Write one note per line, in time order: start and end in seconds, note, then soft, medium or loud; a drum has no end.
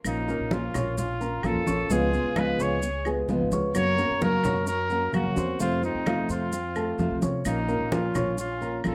0.04 0.38 A#1 loud
0.04 0.27 F3 medium
0.04 0.48 A#3 medium
0.04 0.27 A#3 medium
0.04 0.28 C#4 medium
0.04 0.54 D#4 medium
0.04 0.27 F4 medium
0.04 high conga soft
0.04 claves medium
0.04 maracas medium
0.28 0.66 A#3 medium
0.28 0.51 A#3 soft
0.28 0.51 C#4 medium
0.28 0.50 F4 soft
0.28 0.66 A#4 medium
0.28 0.66 A#5 medium
0.28 high conga soft
0.28 maracas soft
0.39 0.72 A#1 medium
0.50 0.96 F3 medium
0.50 0.97 A#3 medium
0.50 0.96 C#4 medium
0.50 0.97 C#4 medium
0.50 0.98 F4 medium
0.50 0.97 F4 medium
0.50 high conga loud
0.50 maracas soft
0.74 1.40 A#1 medium
0.74 1.12 C#4 medium
0.74 1.12 C#5 medium
0.74 1.13 C#6 medium
0.74 high conga soft
0.74 low conga medium
0.74 claves medium
0.74 maracas medium
0.97 1.40 C#4 medium
0.97 1.47 F4 medium
0.97 muted nylon-string guitar stroke medium
0.97 high conga soft
0.97 low conga medium
0.97 maracas medium
1.21 1.58 A#3 medium
1.21 1.43 A#3 soft
1.21 1.43 C#4 soft
1.21 1.43 F4 medium
1.21 1.59 A#4 medium
1.21 1.59 A#5 medium
1.21 high conga soft
1.21 maracas soft
1.43 1.55 A#1 medium
1.43 1.66 F3 medium
1.43 1.66 A#3 medium
1.43 1.66 C#4 medium
1.43 1.89 F4 medium
1.43 1.65 F4 medium
1.43 1.93 A4 medium
1.43 high conga medium
1.43 claves medium
1.43 maracas soft
1.55 1.66 F2 medium
1.66 1.89 A#1 medium
1.66 1.90 A#3 soft
1.66 1.86 C#4 medium
1.66 1.89 C#4 soft
1.66 1.89 F4 soft
1.66 1.86 C#5 medium
1.66 1.86 C#6 medium
1.66 high conga medium
1.66 maracas medium
1.89 2.23 C#2 loud
1.89 2.12 C#3 medium
1.89 2.28 C#3 medium
1.89 2.12 F3 medium
1.89 2.12 G#3 medium
1.89 2.12 B3 medium
1.89 2.28 C#4 medium
1.89 2.36 F4 medium
1.89 2.11 F4 medium
1.89 2.40 G#4 loud
1.89 2.28 C#5 medium
1.89 maracas medium
2.12 2.35 G#3 soft
2.12 2.35 B3 soft
2.12 2.35 F4 medium
2.12 high conga soft
2.12 maracas soft
2.24 2.57 C#2 medium
2.36 2.81 C#3 medium
2.36 2.82 F3 medium
2.36 2.55 F3 medium
2.36 2.82 G#3 medium
2.36 2.82 B3 medium
2.36 2.56 F4 medium
2.36 2.82 F4 medium
2.36 2.59 G#4 medium
2.36 2.63 B4 medium
2.36 2.56 F5 medium
2.36 high conga medium
2.36 claves medium
2.36 maracas soft
2.59 3.25 C#2 medium
2.59 2.97 C#4 medium
2.59 3.06 G#4 medium
2.59 2.98 C#5 medium
2.59 3.07 C#5 medium
2.59 2.98 C#6 medium
2.59 maracas medium
2.82 muted nylon-string guitar stroke medium
2.82 high conga soft
2.82 maracas medium
3.05 3.44 G#3 medium
3.05 3.28 G#3 soft
3.05 3.28 B3 soft
3.05 3.28 F4 soft
3.05 3.44 G#4 medium
3.05 3.44 G#5 medium
3.05 high conga soft
3.05 claves medium
3.05 maracas soft
3.28 3.40 C#2 medium
3.28 3.51 C#3 medium
3.28 3.51 F3 medium
3.28 3.51 G#3 medium
3.28 3.51 B3 medium
3.28 3.50 F4 medium
3.28 high conga medium
3.28 maracas soft
3.40 3.51 G#1 medium
3.52 3.74 C#2 medium
3.52 3.74 G#3 soft
3.52 3.74 B3 soft
3.52 3.90 C#4 medium
3.52 3.74 F4 medium
3.52 3.90 C#5 medium
3.52 3.90 C#6 medium
3.52 high conga medium
3.52 maracas medium
3.74 4.08 F#2 loud
3.74 3.97 C#3 medium
3.74 3.97 F#3 medium
3.74 3.97 A#3 medium
3.74 3.97 C#4 medium
3.74 3.97 F#4 medium
3.74 4.18 A#4 loud
3.74 4.19 C#5 loud
3.74 claves medium
3.74 maracas medium
3.98 4.36 A#3 medium
3.98 4.21 A#3 soft
3.98 4.21 C#4 medium
3.98 4.20 F#4 medium
3.98 4.37 A#4 medium
3.98 4.37 A#5 medium
3.98 high conga soft
3.98 maracas soft
4.10 4.43 F#2 medium
4.21 4.66 C#3 medium
4.21 4.66 F#3 medium
4.21 4.66 A#3 medium
4.21 4.66 C#4 medium
4.21 4.65 F#4 medium
4.21 4.66 F#4 medium
4.21 4.65 A#4 loud
4.21 high conga loud
4.21 maracas soft
4.44 5.10 F#2 medium
4.44 4.83 C#4 medium
4.44 4.83 C#5 medium
4.44 4.83 C#6 medium
4.44 high conga soft
4.44 low conga medium
4.44 claves medium
4.44 maracas medium
4.67 5.11 F#4 medium
4.67 5.11 A#4 loud
4.67 muted nylon-string guitar stroke medium
4.67 high conga soft
4.67 maracas medium
4.90 5.29 A#3 medium
4.90 5.12 A#3 soft
4.90 5.13 C#4 soft
4.90 5.13 F#4 soft
4.90 5.29 A#4 medium
4.90 5.29 A#5 medium
4.90 high conga soft
4.90 maracas soft
5.12 5.25 F#2 medium
5.12 5.35 C#3 medium
5.12 5.36 F#3 medium
5.12 5.36 A#3 medium
5.12 5.35 C#4 medium
5.12 5.57 C#4 medium
5.12 5.35 F#4 medium
5.12 5.57 F#4 medium
5.12 high conga medium
5.12 claves medium
5.12 maracas soft
5.26 5.36 C#2 medium
5.36 5.59 E2 medium
5.36 5.59 A#3 soft
5.36 5.56 C4 medium
5.36 5.59 C#4 soft
5.36 5.59 F#4 soft
5.36 5.56 C5 medium
5.36 5.56 C6 medium
5.36 high conga medium
5.36 maracas medium
5.59 5.93 F2 loud
5.59 5.82 C3 medium
5.59 5.98 C3 medium
5.59 5.82 F3 medium
5.59 5.82 A3 medium
5.59 5.82 C4 medium
5.59 5.98 C4 medium
5.59 5.82 F4 medium
5.59 5.98 C5 medium
5.59 high conga soft
5.59 maracas medium
5.83 6.06 A3 soft
5.83 6.26 C4 medium
5.83 6.06 C4 medium
5.83 6.27 D#4 medium
5.83 6.06 F4 soft
5.83 high conga soft
5.83 maracas soft
5.95 6.28 F2 medium
6.06 6.52 C3 medium
6.06 6.52 F3 medium
6.06 6.25 F3 medium
6.06 6.52 A3 medium
6.06 6.52 C4 medium
6.06 6.26 F4 medium
6.06 6.52 F4 medium
6.06 6.26 F5 medium
6.06 high conga loud
6.06 claves medium
6.06 maracas soft
6.29 6.95 F2 medium
6.29 6.68 C4 medium
6.29 7.18 C4 medium
6.29 7.19 F4 medium
6.29 6.68 C5 medium
6.29 6.68 C6 medium
6.29 maracas medium
6.53 muted nylon-string guitar stroke medium
6.53 high conga soft
6.53 maracas medium
6.75 7.14 A3 medium
6.75 6.98 A3 soft
6.75 6.98 C4 soft
6.75 6.98 F4 soft
6.75 7.14 A4 medium
6.75 7.14 A5 medium
6.75 high conga soft
6.75 claves medium
6.75 maracas soft
6.98 7.10 F2 medium
6.98 7.21 C3 medium
6.98 7.21 F3 medium
6.98 7.21 A3 medium
6.98 7.22 C4 medium
6.98 7.21 F4 medium
6.98 high conga medium
6.98 maracas soft
7.11 7.22 C2 medium
7.22 7.45 C2 medium
7.22 7.45 A3 soft
7.22 7.45 C4 soft
7.22 7.60 C#4 medium
7.22 7.44 F4 medium
7.22 7.61 C#5 medium
7.22 7.61 C#6 medium
7.22 high conga medium
7.22 maracas medium
7.45 7.79 A#1 loud
7.45 7.68 F3 medium
7.45 7.68 A#3 medium
7.45 7.89 A#3 medium
7.45 7.68 C#4 medium
7.45 7.94 D#4 medium
7.45 7.67 F4 medium
7.45 high conga soft
7.45 claves medium
7.45 maracas medium
7.68 8.06 A#3 medium
7.68 7.91 A#3 soft
7.68 7.91 C#4 soft
7.68 7.91 F4 medium
7.68 8.07 A#4 medium
7.68 8.07 A#5 medium
7.68 high conga soft
7.68 maracas soft
7.80 8.13 A#1 medium
7.92 8.36 F3 medium
7.92 8.37 A#3 medium
7.92 8.38 C#4 medium
7.92 8.37 C#4 medium
7.92 8.38 F4 medium
7.92 high conga loud
7.92 maracas soft
8.15 8.81 A#1 medium
8.15 8.53 C#4 medium
8.15 8.53 C#5 medium
8.15 8.54 C#6 medium
8.15 high conga soft
8.15 low conga medium
8.15 claves medium
8.15 maracas medium
8.38 8.82 C#4 medium
8.38 8.82 F4 medium
8.38 muted nylon-string guitar stroke medium
8.38 high conga soft
8.38 maracas medium
8.61 8.95 A#3 medium
8.61 8.84 A#3 soft
8.61 8.84 C#4 soft
8.61 8.83 F4 soft
8.61 8.95 A#4 medium
8.61 8.95 A#5 medium
8.61 high conga soft
8.61 maracas soft
8.84 8.95 A#1 medium
8.84 8.95 F3 medium
8.84 8.95 A#3 medium
8.84 8.95 C#4 medium
8.84 8.95 F4 medium
8.84 8.95 A4 medium
8.84 high conga medium
8.84 claves medium
8.84 maracas soft